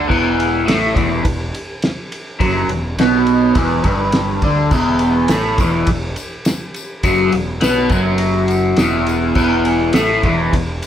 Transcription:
0.08 E1 E2 E3, kick, crash
0.40 ride
0.66 A1 A2 A3, snare, ride
0.94 E1 E2 E3, kick, ride
1.24 E1 E2, kick, ride
1.55 ride
1.82 snare, ride
2.12 ride
2.39 F#1 F#2 F#3, kick, ride
2.68 E1 E2, ride
2.97 B1 B2 B3, snare, ride
3.27 ride
3.55 E1 E2 E3, kick, ride
3.84 G1 G2 G3, kick, ride
4.12 snare, ride
4.42 D2 D3 D4, kick, ride
4.71 E1 E2 E3, kick, crash, tambourine
4.99 ride, tambourine
5.28 A1 A2 A3, snare, ride, tambourine
5.58 E1 E2 E3, kick, ride, tambourine
5.87 E1 E2, kick, ride
6.16 ride, tambourine
6.45 snare, ride, tambourine
6.74 ride, tambourine
7.03 F#1 F#2 F#3, kick, ride, tambourine
7.32 E1 E2, ride, tambourine
7.61 B1 B2 B3, snare, ride, tambourine
7.89 F#1 F#2 F#3, kick, ride, tambourine
8.18 ride
8.48 ride, tambourine
8.77 E1 E2 E3, snare, ride, tambourine
9.06 ride, tambourine
9.35 E1 E2 E3, kick, crash, tambourine
9.65 ride, tambourine
9.93 A1 A2 A3, snare, ride, tambourine
10.23 E1 E2 E3, kick, ride
10.53 E1 E2, kick, ride
10.82 ride, tambourine

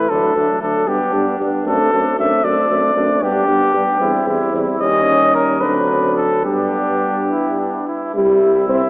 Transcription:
Already playing: B4
0.09 D2 F#3 A3 D4 A4
0.35 D2 F#3 A3 D4
0.60 D2 F#3 A3 D4 A4
0.86 G2 G3 B3 D4 G4
1.12 G2 G3 B3 D4
1.39 G2 G3 B3 D4
1.65 F#2 A3 C4 D4 A4
1.92 F#2 A3 C4 D4
2.17 F#2 A3 C4 D4 E5
2.43 F#2 A3 C4 D4 D5
2.69 F#2 A3 C4 D4
2.95 F#2 A3 C4 D4
3.21 G2 G3 B3 D4 G4
3.48 G2 G3 B3 D4
3.74 G2 G3 B3 D4
3.99 E2 G3 C4 E4
4.26 E2 G3 C4 E4
4.52 E2 G3 C4 E4
4.80 D#2 G3 C#4 D#5
5.34 A#4
5.60 D2 F#3 C4 D4 B4
6.17 A4
6.44 G2 G3 B3 D4 G4
7.30 E4
7.59 D4
7.87 E4
8.14 C2 G3 E4 E5
8.69 C4

